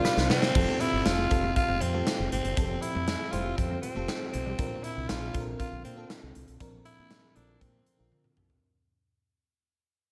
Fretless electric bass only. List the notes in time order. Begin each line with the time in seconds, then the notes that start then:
0.17 C2
0.30 C3
0.55 F1
0.93 G1
1.05 F1
1.31 F1
1.69 F1
1.82 F2
2.19 F1
2.32 G1
2.44 F#1
2.57 F1
2.95 F2
3.33 F1
3.58 F2
3.96 F1
4.34 B1
4.59 A#1
4.97 C2
5.10 A#1
5.35 A#1
5.72 A#1
5.85 A#2
6.23 C2
6.36 C2
6.48 B1
6.61 A#1
6.99 A#2
7.36 A#1
7.61 A#2
8.00 A#1
8.37 B1